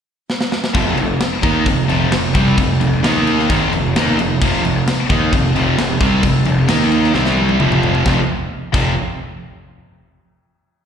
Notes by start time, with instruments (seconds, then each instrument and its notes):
0.30 snare
0.41 snare
0.52 snare
0.64 snare
0.74 fingered electric bass F1, distorted electric guitar F2 C3 F3, kick, crash
0.97 fingered electric bass F1, distorted electric guitar F2 C3, crash
1.20 snare, crash
1.43 fingered electric bass D#2, distorted electric guitar D#3 A#3 D#4, kick, crash
1.65 fingered electric bass F1, distorted electric guitar F2 C3, kick, crash
1.88 fingered electric bass F1, distorted electric guitar F2 C3 F3, crash
2.11 fingered electric bass F1, distorted electric guitar F2 C3, snare, crash
2.34 fingered electric bass C2, distorted electric guitar C3 G3 C4, kick, crash
2.57 fingered electric bass F1, distorted electric guitar F2 C3, kick, crash
2.80 fingered electric bass F1, distorted electric guitar F2 C3, crash
3.03 fingered electric bass D#2, distorted electric guitar D#3 A#3 D#4, snare, crash
3.27 crash
3.39 snare
3.49 fingered electric bass G#1, distorted electric guitar G#2 D#3 G#3, kick, crash
3.72 fingered electric bass F1, distorted electric guitar F2 C3, crash
3.95 fingered electric bass D#2, distorted electric guitar D#3 A#3 D#4, snare, crash
4.18 fingered electric bass F1, distorted electric guitar F2 C3, crash
4.42 fingered electric bass F1, distorted electric guitar F2 C3 F3, kick, crash
4.64 fingered electric bass F1, distorted electric guitar F2 C3, crash
4.87 snare, crash
5.10 fingered electric bass D#2, distorted electric guitar D#3 A#3 D#4, kick, crash
5.33 fingered electric bass F1, distorted electric guitar F2 C3, kick, crash
5.56 fingered electric bass F1, distorted electric guitar F2 C3 F3, crash
5.78 fingered electric bass F1, distorted electric guitar F2 C3, snare, crash
6.01 fingered electric bass C2, distorted electric guitar C3 G3 C4, kick, crash
6.23 fingered electric bass F1, distorted electric guitar F2 C3, kick, crash
6.45 fingered electric bass F1, distorted electric guitar F2 C3, crash
6.68 fingered electric bass D#2, distorted electric guitar D#3 A#3 D#4, snare, crash
6.92 crash
7.04 snare
7.14 fingered electric bass C2, distorted electric guitar C3 G3 C4, snare
7.25 snare
7.37 high tom
7.49 high tom
7.59 fingered electric bass F1, distorted electric guitar F2 C3 F3, mid tom
7.72 mid tom
7.83 floor tom
7.95 floor tom
8.04 fingered electric bass F1, distorted electric guitar F2 C3 F3, kick, snare
8.73 fingered electric bass F1, distorted electric guitar F2 C3 F3, kick, crash